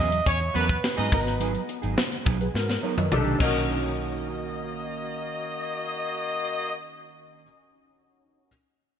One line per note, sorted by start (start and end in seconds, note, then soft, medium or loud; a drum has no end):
0.00 0.20 E2 medium
0.00 0.18 F#3 loud
0.00 0.12 B3 medium
0.00 1.12 B3 loud
0.00 0.11 C#4 medium
0.00 1.14 C#4 medium
0.00 1.12 F#4 medium
0.00 0.10 G#4 loud
0.00 1.15 G#4 loud
0.00 0.30 D#5 loud
0.11 muted clean electric guitar stroke medium
0.11 closed hi-hat medium
0.26 0.48 E2 loud
0.26 0.38 C#4 loud
0.26 0.38 C#5 loud
0.26 0.58 C#5 loud
0.26 kick medium
0.26 closed hi-hat medium
0.40 muted clean electric guitar stroke soft
0.40 closed hi-hat medium
0.54 0.76 E2 loud
0.54 0.75 F#3 loud
0.54 0.77 B3 loud
0.54 0.69 B3 medium
0.54 0.68 C#4 loud
0.54 0.68 A#4 loud
0.54 0.77 B4 loud
0.54 1.13 B4 loud
0.54 closed hi-hat medium
0.69 muted clean electric guitar stroke soft
0.69 kick loud
0.69 closed hi-hat medium
0.83 muted clean electric guitar stroke soft
0.83 snare loud
0.97 1.09 G#2 medium
0.97 1.10 F#3 medium
0.97 1.11 B3 medium
0.97 1.12 C#4 medium
0.97 1.21 D#4 medium
0.97 1.11 G#4 medium
0.97 1.20 D#5 loud
0.97 closed hi-hat medium
1.11 1.55 G#1 loud
1.11 2.03 B3 medium
1.11 2.03 D#4 medium
1.11 2.04 F#4 medium
1.11 1.66 B4 medium
1.11 2.04 A#5 medium
1.11 muted clean electric guitar stroke soft
1.11 kick loud
1.11 open hi-hat medium
1.25 muted clean electric guitar stroke soft
1.25 snare soft
1.25 closed hi-hat medium
1.40 1.60 F#3 medium
1.40 1.54 B3 loud
1.40 1.54 D#4 medium
1.40 1.53 G#4 loud
1.40 closed hi-hat medium
1.54 muted clean electric guitar stroke soft
1.54 closed hi-hat soft
1.68 muted clean electric guitar stroke soft
1.68 closed hi-hat medium
1.82 1.94 G#1 medium
1.82 2.00 F#3 medium
1.82 1.99 B3 soft
1.82 1.99 D#4 medium
1.82 1.98 G#4 medium
1.82 closed hi-hat soft
1.98 snare loud
2.11 muted clean electric guitar stroke soft
2.11 closed hi-hat medium
2.25 2.48 B1 medium
2.25 2.46 F#3 loud
2.25 2.40 B3 loud
2.25 2.39 D#4 loud
2.25 2.39 G#4 medium
2.25 kick loud
2.25 closed hi-hat medium
2.40 2.54 G#4 medium
2.40 2.54 B4 medium
2.40 muted clean electric guitar stroke medium
2.40 closed hi-hat medium
2.54 2.76 G#2 loud
2.54 2.82 F#4 medium
2.54 2.82 A#4 medium
2.54 snare medium
2.69 muted clean electric guitar stroke medium
2.69 snare medium
2.82 3.03 F#3 medium
2.82 2.97 B3 medium
2.82 2.97 D#4 medium
2.82 2.97 A#4 medium
2.82 2.97 C#5 medium
2.97 3.08 F#2 medium
2.97 3.25 B4 medium
2.97 3.25 D#5 medium
2.97 muted clean electric guitar stroke medium
2.97 high tom medium
3.12 3.33 B1 loud
3.12 3.34 D4 medium
3.12 3.35 D#4 medium
3.12 3.35 G4 medium
3.12 3.35 A4 loud
3.12 muted clean electric guitar stroke soft
3.12 mid tom medium
3.26 3.38 D#3 medium
3.26 3.41 A3 medium
3.26 3.40 D4 medium
3.26 3.40 G4 medium
3.38 7.43 B1 medium
3.38 7.46 D#3 medium
3.38 6.73 A#3 medium
3.38 7.47 A#3 medium
3.38 7.42 C#4 medium
3.38 7.43 D#4 medium
3.38 6.73 F#4 medium
3.38 7.44 F#4 medium
3.38 6.73 D#5 loud
3.38 kick loud
3.38 crash medium
3.43 7.48 C#4 medium
3.43 7.49 F#4 medium
3.43 7.44 A#4 medium